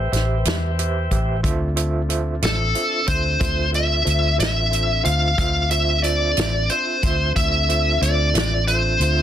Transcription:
0.00 1.41 B4 medium
0.00 1.41 C5 medium
0.00 1.41 E5 medium
0.00 1.41 G5 medium
0.12 0.42 A1 medium
0.12 0.37 G4 medium
0.12 0.37 B4 soft
0.12 0.37 C5 soft
0.12 0.37 E5 medium
0.12 snare soft
0.12 closed hi-hat soft
0.45 1.07 E2 medium
0.45 0.70 G4 medium
0.45 0.70 B4 soft
0.45 0.70 C5 soft
0.45 0.70 E5 medium
0.45 snare loud
0.45 closed hi-hat medium
0.79 1.03 G4 medium
0.79 1.03 B4 medium
0.79 1.03 C5 medium
0.79 1.03 E5 medium
0.79 closed hi-hat medium
1.11 1.41 A1 medium
1.11 1.36 G4 medium
1.11 1.36 B4 medium
1.11 1.36 C5 medium
1.11 1.36 E5 medium
1.11 kick medium
1.11 closed hi-hat soft
1.43 2.38 D2 medium
1.43 5.34 C4 medium
1.43 5.34 D4 medium
1.43 1.68 F4 medium
1.43 5.34 F4 medium
1.43 1.68 A4 medium
1.43 5.34 A4 medium
1.43 1.68 C5 medium
1.43 1.68 E5 medium
1.43 kick loud
1.43 closed hi-hat medium
1.76 2.01 F4 medium
1.76 2.01 A4 medium
1.76 2.01 C5 medium
1.76 2.01 E5 medium
1.76 closed hi-hat medium
2.09 2.34 F4 medium
2.09 2.34 A4 medium
2.09 2.34 C5 medium
2.09 2.34 E5 medium
2.09 closed hi-hat medium
2.42 2.72 A1 medium
2.42 2.67 F4 soft
2.42 2.67 A4 soft
2.42 3.08 A4 medium
2.42 2.67 C5 soft
2.42 2.67 E5 soft
2.42 snare medium
2.42 closed hi-hat medium
2.75 3.00 F4 soft
2.75 3.00 A4 soft
2.75 3.00 C5 soft
2.75 3.00 E5 soft
2.75 closed hi-hat soft
3.07 3.38 D2 medium
3.07 3.32 F4 soft
3.07 3.33 A4 soft
3.07 3.70 C5 medium
3.07 3.33 C5 soft
3.07 3.33 E5 medium
3.07 kick medium
3.07 closed hi-hat medium
3.39 4.03 D2 loud
3.39 3.65 F4 soft
3.39 3.65 A4 soft
3.39 3.65 C5 soft
3.39 3.65 E5 soft
3.39 kick loud
3.39 closed hi-hat medium
3.72 3.97 F4 medium
3.72 3.98 A4 soft
3.72 3.98 C5 soft
3.72 3.98 E5 medium
3.72 4.36 E5 medium
3.72 closed hi-hat soft
4.05 4.37 D2 medium
4.05 4.30 F4 medium
4.05 4.31 A4 soft
4.05 4.31 C5 soft
4.05 4.31 E5 medium
4.05 closed hi-hat medium
4.38 5.01 A1 medium
4.38 4.63 F4 soft
4.38 4.63 A4 soft
4.38 4.64 C5 soft
4.38 4.64 E5 medium
4.38 5.04 E5 medium
4.38 closed hi-hat medium
4.43 snare medium
4.71 4.96 F4 medium
4.71 4.96 A4 soft
4.71 4.96 C5 soft
4.71 4.96 E5 medium
4.71 closed hi-hat medium
5.04 5.35 D2 medium
5.04 5.29 F4 soft
5.04 5.29 A4 soft
5.04 5.29 C5 soft
5.04 5.29 E5 medium
5.04 5.38 F5 medium
5.04 closed hi-hat soft
5.38 6.33 D2 loud
5.38 9.22 C4 medium
5.38 9.22 D4 medium
5.38 5.62 F4 medium
5.38 9.22 F4 medium
5.38 5.63 A4 soft
5.38 9.22 A4 medium
5.38 5.63 C5 medium
5.38 5.63 E5 medium
5.38 5.70 F5 medium
5.38 kick medium
5.38 closed hi-hat medium
5.71 5.96 F4 medium
5.71 5.96 A4 soft
5.71 5.96 C5 soft
5.71 6.03 E5 medium
5.71 5.96 E5 medium
5.71 closed hi-hat soft
6.03 6.29 F4 soft
6.03 6.29 A4 medium
6.03 6.29 C5 soft
6.03 6.71 D5 medium
6.03 6.29 E5 medium
6.03 closed hi-hat soft
6.37 6.67 A1 medium
6.37 6.62 F4 soft
6.37 6.62 A4 soft
6.37 6.62 C5 soft
6.37 6.62 E5 medium
6.37 snare loud
6.37 closed hi-hat medium
6.69 6.95 F4 soft
6.69 6.95 A4 soft
6.69 7.32 C5 medium
6.69 6.95 C5 soft
6.69 6.95 E5 medium
6.69 closed hi-hat soft
7.03 7.33 D2 medium
7.03 7.28 F4 medium
7.03 7.28 A4 soft
7.03 7.28 C5 soft
7.03 7.28 E5 medium
7.03 kick medium
7.03 closed hi-hat medium
7.36 7.97 D2 loud
7.36 7.61 F4 soft
7.36 7.61 A4 soft
7.36 7.61 C5 soft
7.36 8.02 E5 medium
7.36 7.61 E5 medium
7.36 kick medium
7.36 closed hi-hat medium
7.69 7.93 F4 soft
7.69 7.94 A4 soft
7.69 7.93 C5 soft
7.69 7.94 E5 medium
7.69 closed hi-hat medium
8.01 8.32 D2 medium
8.01 8.27 F4 soft
8.01 8.27 A4 soft
8.01 8.27 C5 soft
8.01 8.64 D5 medium
8.01 8.27 E5 medium
8.01 closed hi-hat medium
8.34 8.96 A1 medium
8.34 8.59 F4 soft
8.34 8.59 A4 soft
8.34 8.59 C5 soft
8.34 8.59 E5 medium
8.34 snare loud
8.34 closed hi-hat medium
8.67 8.92 F4 medium
8.67 8.92 A4 medium
8.67 9.22 C5 medium
8.67 8.92 C5 soft
8.67 8.92 E5 medium
8.67 closed hi-hat medium
9.00 9.22 D2 medium
9.00 9.22 F4 medium
9.00 9.22 A4 soft
9.00 9.22 C5 soft
9.00 9.22 E5 medium
9.00 closed hi-hat medium

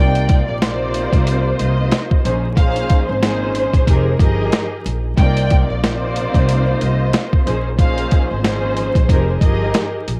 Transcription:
0.00 0.41 C2 loud
0.00 0.57 C3 loud
0.00 0.57 A#3 loud
0.00 0.57 D#4 medium
0.00 0.57 F4 loud
0.00 0.57 D5 loud
0.00 0.44 G5 loud
0.15 closed hi-hat medium
0.29 kick loud
0.29 closed hi-hat medium
0.48 1.05 A#1 medium
0.48 1.56 D5 loud
0.61 2.24 C3 loud
0.61 2.24 A#3 loud
0.61 2.23 D#4 medium
0.61 2.25 F4 loud
0.61 2.23 C5 loud
0.61 snare loud
0.61 closed hi-hat loud
0.94 closed hi-hat medium
1.13 1.53 C2 medium
1.13 kick medium
1.13 closed hi-hat medium
1.27 closed hi-hat loud
1.59 1.88 C2 medium
1.59 2.08 D#5 medium
1.59 closed hi-hat medium
1.91 snare loud
1.91 closed hi-hat loud
2.11 kick loud
2.24 2.81 A#1 loud
2.24 2.46 A#2 loud
2.24 2.46 F3 medium
2.24 2.46 C#4 medium
2.24 2.46 D#4 medium
2.24 2.47 G#4 medium
2.24 2.47 C5 loud
2.24 closed hi-hat medium
2.56 3.17 A#2 loud
2.56 3.17 F3 medium
2.56 3.17 C#4 medium
2.56 3.18 D#4 medium
2.56 3.18 G#4 loud
2.56 3.18 C5 loud
2.56 3.05 F5 loud
2.56 kick loud
2.56 closed hi-hat medium
2.76 closed hi-hat medium
2.90 kick loud
2.90 closed hi-hat medium
3.08 3.66 G#1 medium
3.08 4.16 C5 medium
3.20 3.86 A#2 loud
3.20 3.86 F3 loud
3.20 3.87 C#4 medium
3.20 3.86 D#4 medium
3.20 3.86 G#4 loud
3.20 3.87 C5 loud
3.20 snare loud
3.20 closed hi-hat loud
3.55 closed hi-hat medium
3.73 3.86 A#1 medium
3.73 kick medium
3.73 closed hi-hat medium
3.87 4.16 F1 loud
3.87 4.18 F3 loud
3.87 4.18 D#4 medium
3.87 4.18 G4 medium
3.87 4.18 G#4 medium
3.87 4.18 A#4 loud
3.87 kick medium
3.87 closed hi-hat loud
4.19 4.48 G1 medium
4.19 4.96 F3 loud
4.19 4.96 D#4 medium
4.19 4.96 G4 loud
4.19 4.97 G#4 loud
4.19 4.97 A#4 loud
4.19 4.69 D#5 medium
4.19 kick loud
4.19 closed hi-hat medium
4.52 snare loud
4.52 closed hi-hat loud
4.86 5.14 A#1 loud
4.86 closed hi-hat medium
5.18 5.63 C2 loud
5.18 5.79 C3 loud
5.18 5.79 A#3 loud
5.18 5.79 D#4 medium
5.18 5.79 F4 loud
5.18 5.79 D5 loud
5.18 5.66 G5 loud
5.18 kick loud
5.18 closed hi-hat medium
5.37 closed hi-hat medium
5.50 kick loud
5.50 closed hi-hat medium
5.70 6.26 A#1 medium
5.70 6.77 D5 medium
5.83 7.46 C3 loud
5.83 7.46 A#3 loud
5.83 7.45 D#4 loud
5.83 7.46 F4 loud
5.83 7.45 C5 loud
5.83 snare loud
5.83 closed hi-hat loud
6.16 closed hi-hat medium
6.34 6.75 C2 loud
6.34 kick medium
6.34 closed hi-hat medium
6.49 closed hi-hat loud
6.81 7.09 C2 medium
6.81 7.30 D#5 medium
6.81 closed hi-hat medium
7.13 snare loud
7.13 closed hi-hat loud
7.33 kick loud
7.46 8.03 A#1 loud
7.46 7.68 A#2 loud
7.46 7.68 F3 medium
7.46 7.68 C#4 medium
7.46 7.68 D#4 medium
7.46 7.68 G#4 medium
7.46 7.68 C5 loud
7.46 closed hi-hat medium
7.78 8.39 A#2 loud
7.78 8.39 F3 medium
7.78 8.39 C#4 medium
7.78 8.39 D#4 medium
7.78 8.39 G#4 loud
7.78 8.39 C5 loud
7.78 8.28 F5 loud
7.78 kick loud
7.78 closed hi-hat medium
7.98 closed hi-hat medium
8.11 kick loud
8.11 closed hi-hat medium
8.30 8.87 G#1 medium
8.30 9.38 C5 loud
8.42 9.08 A#2 loud
8.42 9.08 F3 loud
8.42 9.08 C#4 medium
8.42 9.08 D#4 medium
8.42 9.08 G#4 loud
8.42 9.09 C5 loud
8.42 snare loud
8.42 closed hi-hat loud
8.77 closed hi-hat medium
8.95 9.07 A#1 medium
8.95 kick medium
8.95 closed hi-hat medium
9.09 9.38 F1 loud
9.09 9.39 F3 loud
9.09 9.39 D#4 medium
9.09 9.40 G4 medium
9.09 9.40 G#4 medium
9.09 9.40 A#4 loud
9.09 kick medium
9.09 closed hi-hat loud
9.41 9.70 G1 medium
9.41 10.18 F3 loud
9.41 10.18 D#4 medium
9.41 10.18 G4 loud
9.41 10.18 G#4 loud
9.41 10.18 A#4 loud
9.41 9.90 D#5 medium
9.41 kick medium
9.41 closed hi-hat medium
9.74 snare loud
9.74 closed hi-hat loud
10.08 10.20 A#1 medium
10.08 closed hi-hat medium

